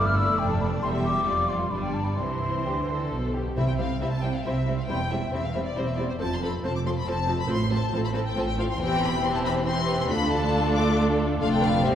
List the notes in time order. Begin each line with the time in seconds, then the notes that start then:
Already playing: G1 G2 A3 E4 D5
0.06 F6
0.16 E6
0.38 F1 F2 D4 G5
0.51 A5
0.61 B5
0.82 E1 E2 G3 G4 E5 C6
1.05 D6
1.26 F1 F2 F4 D5
1.48 D5 C6
1.71 G1 G2 G3 D4 D5 B5
1.82 G5
1.94 A5
2.04 B5
2.15 C2 C3 E3 E4 C5 C6
2.65 D2 D3 G4
2.88 A4
3.12 B1 B2
3.33 G4
3.56 C2 C3 G3 C4 E4 C5 E5
3.68 G5
3.78 G3 C4 E4 C5 F5
4.01 C2 C3 G3 C4 E4 C5 E5
4.11 A5
4.22 G3 C4 E4 C5 G5
4.34 F5
4.44 C2 C3 G3 C4 E4 C5 E5
4.67 G3 C4 E4 C5
4.78 F5
4.87 E1 E2 G3 C4 E4 C5 G5
5.10 G3 C4 E4 C5 E5
5.31 E1 E2 G3 C4 E4 C5 E5
5.45 F5
5.54 G3 C4 E4 C5 E5
5.65 D5
5.76 E1 E2 G3 C4 E4 C5
5.88 E5
5.97 G3 C4 E4 C5 D5
6.10 C5
6.19 F1 F2 F3 C4 A4 C5 A5
6.33 C6
6.42 F3 C4 A4 C5 B5
6.64 F1 F2 F3 C4 A4 C5 A5
6.75 D6
6.85 F3 C4 A4 C5 C6
6.98 B5
7.07 F1 F2 F3 C4 A4 C5 A5
7.28 F3 C4 A4 C5
7.40 B5
7.48 A1 A2 F3 C4 A4 C5 C6
7.70 F3 C4 A4 C5 A5
7.92 A1 A2 F3 C4 A4 C5 A5
8.04 B5
8.13 F3 C4 A4 C5 A5
8.26 G5
8.36 A1 A2 F3 C4 A4 C5 A5
8.47 G5
8.57 F3 C4 A4 C5 F5
8.70 C6
8.79 E1 E2 E3 C4 G4 C5 G5
9.04 B5
9.22 E3 C4 G4 C5 C6
9.34 A5
9.45 B5
9.65 E3 C4 G4 C5 C6
9.87 B4
10.00 C6
10.09 D2 A3 D4 F4 A4 B5
10.32 A5
10.75 D6
11.39 F1 F2 A3 D4 F4 A4 F5
11.52 G5
11.62 B4 F5
11.83 G1 G2 G3 C4 G4 C5 E5